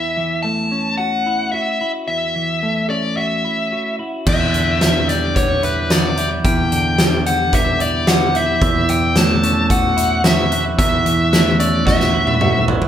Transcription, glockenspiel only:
4.27 4.81 G6 medium
4.81 5.08 A6 soft
5.09 5.36 G6 medium
5.37 5.90 D6 medium
5.91 6.18 D6 medium
6.18 6.44 G6 medium
6.45 6.99 G6 medium
7.26 7.53 G6 medium
7.53 8.06 D6 medium
8.08 8.35 D6 medium
8.34 8.61 G6 medium
8.61 9.16 E6 medium
9.16 9.43 F#6 medium
9.43 9.70 E6 medium
9.70 10.23 C#6 medium
10.24 10.51 C#6 medium
10.52 10.79 F#6 medium
10.78 11.33 E6 medium
11.33 11.60 F#6 medium
11.60 11.87 E6 medium
11.87 12.40 C#6 medium
12.41 12.68 C#6 medium
12.68 12.88 F#6 medium

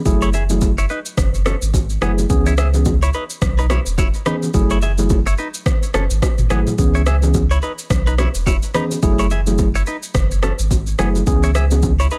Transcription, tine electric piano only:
0.05 0.27 F#3 medium
0.05 0.28 A3 medium
0.05 0.28 E4 medium
0.05 0.28 G#4 loud
0.50 0.70 F#3 medium
0.50 0.70 A3 medium
0.50 0.70 E4 medium
0.50 0.70 G#4 medium
2.02 2.24 F#3 medium
2.02 2.24 A3 medium
2.02 2.24 E4 medium
2.02 2.24 G#4 medium
2.30 2.52 E3 medium
2.30 2.52 B3 medium
2.30 2.52 C#4 medium
2.30 2.52 G#4 loud
2.74 2.94 E3 medium
2.74 2.94 B3 medium
2.74 2.94 C#4 medium
2.74 2.94 G#4 medium
4.26 4.48 E3 medium
4.26 4.48 B3 medium
4.26 4.48 C#4 medium
4.26 4.48 G#4 medium
4.54 4.76 F#3 medium
4.54 4.76 A3 medium
4.54 4.76 E4 medium
4.54 4.76 G#4 loud
4.98 5.18 F#3 medium
4.98 5.18 A3 medium
4.98 5.18 E4 medium
4.98 5.18 G#4 medium
6.50 6.72 F#3 medium
6.50 6.73 A3 medium
6.50 6.73 E4 medium
6.50 6.73 G#4 medium
6.78 7.00 E3 loud
6.78 7.00 B3 medium
6.78 7.01 C#4 medium
6.78 7.01 G#4 loud
7.22 7.42 E3 medium
7.22 7.43 B3 medium
7.22 7.43 C#4 medium
7.22 7.43 G#4 medium
8.74 8.97 E3 medium
8.74 8.97 B3 medium
8.74 8.97 C#4 medium
8.74 8.97 G#4 medium
9.02 9.25 F#3 medium
9.02 9.25 A3 medium
9.02 9.25 E4 medium
9.02 9.25 G#4 loud
9.47 9.67 F#3 medium
9.47 9.67 A3 medium
9.47 9.67 E4 medium
9.47 9.67 G#4 medium
10.99 11.21 F#3 medium
10.99 11.21 A3 medium
10.99 11.21 E4 medium
10.99 11.21 G#4 medium
11.27 11.49 E3 loud
11.27 11.49 B3 medium
11.27 11.49 C#4 medium
11.27 11.49 G#4 loud
11.71 11.91 E3 medium
11.71 11.91 B3 medium
11.71 11.91 C#4 medium
11.71 11.91 G#4 medium

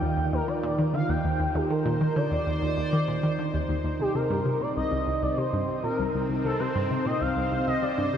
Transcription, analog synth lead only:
0.00 0.32 G5 loud
0.33 0.49 A#4 medium
0.48 0.93 D5 loud
0.94 1.10 F5 medium
1.09 1.56 G5 loud
1.55 1.72 G4 medium
1.70 2.18 A#4 medium
2.16 2.77 D5 loud
2.77 3.65 D5 medium
4.00 4.16 G4 medium
4.15 4.62 A#4 loud
4.61 4.76 D5 loud
4.76 5.24 D#5 loud
5.22 5.39 D5 loud
5.37 5.83 C5 loud
5.83 6.26 A#4 medium
6.44 6.61 A4 loud
6.60 7.07 C5 loud
7.06 7.22 D#5 loud
7.21 7.66 F5 loud
7.67 7.84 D#5 loud
7.82 8.17 D5 loud

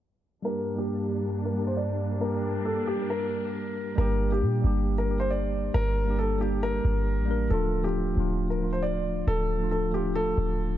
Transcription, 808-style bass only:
3.98 4.44 G1 loud
4.42 4.63 A#2 loud
4.64 5.70 G1 loud
5.75 6.81 G1 loud
6.85 7.20 G1 loud
7.18 7.49 A1 loud
7.51 8.14 D1 loud
8.17 9.23 D1 loud
9.27 10.34 D1 loud
10.38 10.78 D1 loud

